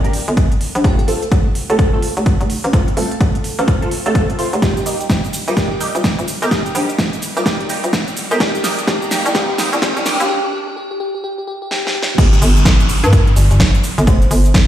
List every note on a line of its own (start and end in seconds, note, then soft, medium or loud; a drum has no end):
0.00 0.26 G1 medium
0.04 0.10 A#3 medium
0.04 0.10 D4 medium
0.04 0.10 G4 medium
0.04 0.10 A#4 medium
0.04 closed hi-hat soft
0.13 open hi-hat loud
0.28 0.49 G1 medium
0.28 closed hi-hat medium
0.37 kick loud
0.37 closed hi-hat medium
0.52 closed hi-hat soft
0.61 open hi-hat medium
0.75 0.83 A#1 medium
0.75 closed hi-hat medium
0.84 1.30 F1 loud
0.84 0.99 A3 medium
0.84 0.99 C4 medium
0.84 0.99 F4 medium
0.84 0.94 G4 medium
0.84 0.99 A4 loud
0.84 kick loud
0.84 closed hi-hat medium
0.99 1.05 G4 medium
0.99 closed hi-hat soft
1.08 1.23 A3 medium
1.08 1.23 C4 medium
1.08 1.23 F4 medium
1.08 1.17 A4 medium
1.08 1.23 A4 medium
1.08 open hi-hat loud
1.22 1.28 A4 medium
1.22 closed hi-hat soft
1.32 1.67 F1 medium
1.32 kick loud
1.32 closed hi-hat medium
1.55 open hi-hat loud
1.70 2.15 F1 medium
1.70 1.76 A3 loud
1.70 1.76 C4 medium
1.70 1.76 F4 medium
1.70 1.76 A4 loud
1.70 closed hi-hat medium
1.79 kick loud
1.79 closed hi-hat medium
1.93 1.99 A3 medium
1.93 1.99 C4 medium
1.93 1.99 F4 medium
1.93 1.99 A4 medium
2.02 open hi-hat loud
2.17 2.38 F1 loud
2.17 closed hi-hat medium
2.26 kick loud
2.26 closed hi-hat medium
2.41 2.62 F1 loud
2.41 closed hi-hat soft
2.50 open hi-hat medium
2.64 2.96 A1 loud
2.64 2.70 C5 medium
2.64 closed hi-hat medium
2.73 2.83 A3 medium
2.73 2.83 C4 medium
2.73 2.83 F4 medium
2.73 2.83 A4 medium
2.73 2.83 C5 medium
2.73 kick loud
2.73 closed hi-hat medium
2.88 closed hi-hat soft
2.97 3.19 D#1 medium
2.97 3.12 A3 medium
2.97 3.12 C4 medium
2.97 3.12 F4 medium
2.97 3.64 A4 medium
2.97 3.12 A4 medium
2.97 open hi-hat loud
3.11 closed hi-hat soft
3.21 3.56 F1 medium
3.21 kick loud
3.21 closed hi-hat medium
3.35 closed hi-hat soft
3.44 open hi-hat medium
3.59 4.04 A1 medium
3.59 3.68 A3 medium
3.59 3.68 C4 medium
3.59 3.68 F4 medium
3.59 3.68 A4 loud
3.59 closed hi-hat soft
3.68 kick loud
3.68 closed hi-hat medium
3.82 3.88 A3 medium
3.82 3.88 C4 medium
3.82 3.88 F4 medium
3.82 3.88 A4 medium
3.82 closed hi-hat soft
3.91 open hi-hat loud
4.06 4.51 F1 medium
4.06 4.37 A3 loud
4.06 4.37 C4 medium
4.06 4.37 F4 medium
4.06 4.37 A4 loud
4.06 closed hi-hat medium
4.15 kick loud
4.15 closed hi-hat medium
4.30 closed hi-hat soft
4.39 4.48 A3 medium
4.39 4.48 C4 medium
4.39 4.48 F4 medium
4.39 4.48 C5 medium
4.39 open hi-hat medium
4.53 4.61 F1 medium
4.53 closed hi-hat soft
4.62 5.08 D#1 loud
4.62 4.77 G3 medium
4.62 4.77 A#3 medium
4.62 4.77 D#4 medium
4.62 4.77 G4 medium
4.62 4.72 G4 medium
4.62 kick loud
4.62 snare soft
4.62 closed hi-hat medium
4.62 riser medium
4.62 shaker soft
4.77 4.83 G4 medium
4.77 closed hi-hat soft
4.77 shaker soft
4.86 5.01 G3 medium
4.86 5.01 A#3 medium
4.86 5.01 D#4 medium
4.86 5.01 G4 medium
4.86 open hi-hat loud
4.86 shaker medium
5.01 closed hi-hat soft
5.01 shaker soft
5.10 5.45 D#1 medium
5.10 kick loud
5.10 snare soft
5.10 closed hi-hat medium
5.10 shaker soft
5.24 shaker soft
5.33 open hi-hat medium
5.33 shaker medium
5.48 5.93 D#1 medium
5.48 5.53 G3 medium
5.48 5.53 A#3 medium
5.48 5.53 D#4 medium
5.48 5.53 G4 loud
5.48 5.54 A#4 medium
5.48 closed hi-hat soft
5.48 shaker soft
5.57 5.71 G3 medium
5.57 5.71 A#3 medium
5.57 5.71 D#4 medium
5.57 5.71 G4 loud
5.57 5.66 G4 medium
5.57 kick loud
5.57 snare medium
5.57 closed hi-hat medium
5.57 shaker soft
5.71 5.77 G4 medium
5.80 5.95 G3 medium
5.80 5.95 A#3 medium
5.80 5.95 D#4 medium
5.80 5.95 G4 medium
5.80 open hi-hat loud
5.80 shaker medium
5.95 6.16 D#1 loud
5.95 closed hi-hat soft
5.95 shaker soft
6.04 kick loud
6.04 snare medium
6.04 closed hi-hat medium
6.04 shaker soft
6.19 6.40 D#1 loud
6.19 closed hi-hat soft
6.19 shaker soft
6.28 open hi-hat medium
6.28 shaker medium
6.42 6.73 G1 medium
6.42 6.48 G3 loud
6.42 6.48 A#3 medium
6.42 6.48 D#4 medium
6.42 6.48 G4 loud
6.42 6.48 A#4 medium
6.42 closed hi-hat soft
6.42 shaker soft
6.51 6.66 A#3 medium
6.51 6.66 D#4 medium
6.51 6.61 G4 medium
6.51 kick loud
6.51 snare medium
6.51 closed hi-hat medium
6.51 shaker soft
6.66 6.72 G4 medium
6.66 closed hi-hat soft
6.66 shaker soft
6.75 6.97 A#1 loud
6.75 6.90 G3 medium
6.75 6.90 A#3 medium
6.75 6.90 D#4 medium
6.75 6.90 G4 medium
6.75 open hi-hat loud
6.75 shaker medium
6.89 closed hi-hat medium
6.89 shaker soft
6.99 7.34 D#1 loud
6.99 kick loud
6.99 snare medium
6.99 closed hi-hat medium
6.99 shaker soft
7.13 closed hi-hat soft
7.13 shaker soft
7.22 open hi-hat medium
7.22 shaker medium
7.37 7.82 D#1 loud
7.37 7.42 G3 loud
7.37 7.42 A#3 medium
7.37 7.42 D#4 medium
7.37 7.42 G4 loud
7.37 7.43 A#4 medium
7.37 closed hi-hat medium
7.37 shaker soft
7.46 7.60 G3 medium
7.46 7.60 A#3 medium
7.46 7.60 D#4 medium
7.46 7.60 G4 loud
7.46 7.55 G4 medium
7.46 kick loud
7.46 snare medium
7.46 closed hi-hat medium
7.46 shaker soft
7.60 7.66 G4 medium
7.60 closed hi-hat soft
7.69 7.84 G3 medium
7.69 7.84 A#3 medium
7.69 7.84 D#4 medium
7.69 7.84 G4 medium
7.69 open hi-hat loud
7.69 shaker medium
7.84 8.05 D#1 medium
7.84 closed hi-hat medium
7.84 shaker soft
7.93 kick loud
7.93 snare medium
7.93 closed hi-hat medium
7.93 shaker soft
8.08 closed hi-hat soft
8.08 shaker soft
8.17 open hi-hat medium
8.17 shaker medium
8.31 8.39 G1 loud
8.31 8.37 G3 loud
8.31 8.37 A#3 medium
8.31 8.37 D#4 medium
8.31 8.37 G4 loud
8.31 8.37 A#4 medium
8.31 closed hi-hat medium
8.31 shaker soft
8.40 8.86 C2 loud
8.40 8.55 G3 medium
8.40 8.55 A#3 medium
8.40 8.55 D#4 medium
8.40 8.55 G4 medium
8.40 8.50 G4 medium
8.40 kick loud
8.40 snare medium
8.40 closed hi-hat medium
8.40 shaker soft
8.55 8.61 G4 medium
8.55 closed hi-hat soft
8.55 shaker soft
8.64 8.79 G3 medium
8.64 8.79 A#3 medium
8.64 8.79 D#4 medium
8.64 8.79 G4 medium
8.64 snare medium
8.64 open hi-hat loud
8.64 shaker medium
8.78 closed hi-hat medium
8.78 shaker soft
8.88 9.23 C2 medium
8.88 9.02 G3 medium
8.88 9.02 A#3 medium
8.88 9.02 D#4 medium
8.88 8.97 G4 medium
8.88 9.02 G4 loud
8.88 kick loud
8.88 snare medium
8.88 closed hi-hat medium
8.88 shaker soft
9.02 9.08 G4 medium
9.02 shaker soft
9.11 9.26 G3 medium
9.11 9.26 A#3 medium
9.11 9.26 D#4 medium
9.11 9.26 G4 medium
9.11 snare medium
9.11 open hi-hat medium
9.11 shaker medium
9.26 9.71 C2 loud
9.26 closed hi-hat medium
9.26 shaker soft
9.35 9.49 G3 medium
9.35 9.49 A#3 medium
9.35 9.49 D#4 medium
9.35 9.49 G4 loud
9.35 9.44 G4 medium
9.35 kick loud
9.35 snare medium
9.35 closed hi-hat medium
9.35 shaker soft
9.49 9.55 G4 medium
9.58 9.73 G3 medium
9.58 9.73 A#3 medium
9.58 9.73 D#4 medium
9.58 9.73 G4 medium
9.58 snare medium
9.58 open hi-hat loud
9.58 shaker medium
9.73 9.94 C2 loud
9.73 closed hi-hat medium
9.73 shaker soft
9.82 9.97 G3 medium
9.82 9.97 A#3 medium
9.82 9.97 D#4 medium
9.82 9.91 G4 medium
9.82 9.97 G4 loud
9.82 kick loud
9.82 snare medium
9.82 closed hi-hat medium
9.82 shaker soft
9.97 10.18 C2 loud
9.97 10.02 G4 medium
9.97 closed hi-hat soft
9.97 shaker soft
10.06 10.20 G3 medium
10.06 10.20 A#3 medium
10.06 10.20 D#4 medium
10.06 10.20 G4 medium
10.06 snare medium
10.06 open hi-hat medium
10.06 shaker medium
10.20 10.29 D#2 medium
10.20 closed hi-hat medium
10.20 shaker soft
10.29 10.39 G4 loud
10.44 10.50 G4 medium
10.53 10.62 G4 medium
10.67 10.73 G4 medium
10.76 10.86 G4 medium
10.91 10.97 G4 medium
11.00 11.09 G4 loud
11.15 11.20 G4 medium
11.24 11.33 G4 medium
11.38 11.44 G4 medium
11.47 11.57 G4 medium
11.62 11.68 G4 medium
11.71 11.80 G4 loud
11.71 snare medium
11.85 11.91 G4 medium
11.85 snare medium
11.95 12.04 G4 loud
12.03 snare medium
12.09 12.15 G4 medium
12.18 12.40 G1 loud
12.18 12.28 G4 medium
12.18 kick loud
12.18 closed hi-hat medium
12.18 crash loud
12.18 downlifter medium
12.18 shaker soft
12.33 12.39 G4 medium
12.33 shaker soft
12.42 12.64 G1 loud
12.42 open hi-hat loud
12.42 shaker medium
12.56 closed hi-hat soft
12.56 shaker soft
12.65 13.01 G1 medium
12.65 kick loud
12.65 snare loud
12.65 closed hi-hat medium
12.65 shaker soft
12.80 closed hi-hat soft
12.80 shaker soft
12.89 open hi-hat medium
12.89 shaker medium
13.04 13.35 G2 medium
13.04 13.09 A#4 medium
13.04 closed hi-hat soft
13.04 shaker soft
13.13 13.22 A#4 medium
13.13 kick loud
13.13 closed hi-hat medium
13.13 shaker soft
13.27 closed hi-hat soft
13.36 13.49 G1 loud
13.36 open hi-hat loud
13.36 shaker medium
13.51 13.72 G1 loud
13.51 closed hi-hat medium
13.51 shaker soft
13.60 kick loud
13.60 snare loud
13.60 closed hi-hat medium
13.60 shaker soft
13.75 closed hi-hat soft
13.75 shaker soft
13.84 open hi-hat medium
13.84 shaker medium
13.98 14.06 G1 loud
13.98 closed hi-hat medium
13.98 shaker soft
14.07 14.29 F1 loud
14.07 14.54 C5 medium
14.07 kick loud
14.07 closed hi-hat medium
14.07 shaker soft
14.22 closed hi-hat soft
14.22 shaker soft
14.31 14.53 G1 loud
14.31 open hi-hat loud
14.31 shaker medium
14.45 closed hi-hat soft
14.45 shaker soft
14.54 14.67 G1 medium
14.54 kick loud
14.54 snare loud
14.54 closed hi-hat medium
14.54 shaker soft